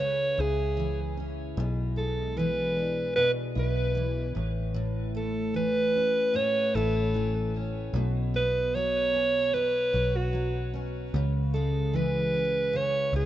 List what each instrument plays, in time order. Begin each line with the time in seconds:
Already playing: fingered electric bass C#2, steel-string acoustic guitar C#3 E3 G#3 C#4
0.00 alto saxophone C#5
0.38 fingered electric bass C#2, steel-string acoustic guitar E4, alto saxophone G#4
0.77 steel-string acoustic guitar E3
1.17 steel-string acoustic guitar C#4
1.57 fingered electric bass B1, steel-string acoustic guitar B2
1.96 steel-string acoustic guitar G#3, alto saxophone A4
2.37 steel-string acoustic guitar E3, alto saxophone B4
2.76 steel-string acoustic guitar D4
3.16 steel-string acoustic guitar B2, alto saxophone B4
3.55 fingered electric bass B1, steel-string acoustic guitar E4
3.59 alto saxophone B4
3.95 steel-string acoustic guitar E3
4.35 fingered electric bass A1, steel-string acoustic guitar A2
4.74 steel-string acoustic guitar A2
5.15 steel-string acoustic guitar A3, alto saxophone A4
5.54 steel-string acoustic guitar E3, alto saxophone B4
5.95 steel-string acoustic guitar C#4
6.34 steel-string acoustic guitar A2, alto saxophone C#5
6.75 fingered electric bass A1, steel-string acoustic guitar E4, alto saxophone A4
7.14 steel-string acoustic guitar E3
7.54 steel-string acoustic guitar C#4
7.93 fingered electric bass B1, steel-string acoustic guitar B2
8.34 steel-string acoustic guitar B3, alto saxophone B4
8.75 steel-string acoustic guitar F#3, alto saxophone C#5
9.13 steel-string acoustic guitar C#4
9.54 steel-string acoustic guitar B2, alto saxophone B4
9.93 fingered electric bass B1, steel-string acoustic guitar F#4
10.16 alto saxophone F#4
10.33 steel-string acoustic guitar F#3
10.73 steel-string acoustic guitar C#4
11.14 fingered electric bass C#2, steel-string acoustic guitar C#3
11.54 steel-string acoustic guitar G#3, alto saxophone A4
11.93 steel-string acoustic guitar E3, alto saxophone B4
12.34 steel-string acoustic guitar C#4
12.73 steel-string acoustic guitar C#3, alto saxophone C#5
13.13 fingered electric bass C#2, steel-string acoustic guitar E4, alto saxophone G#4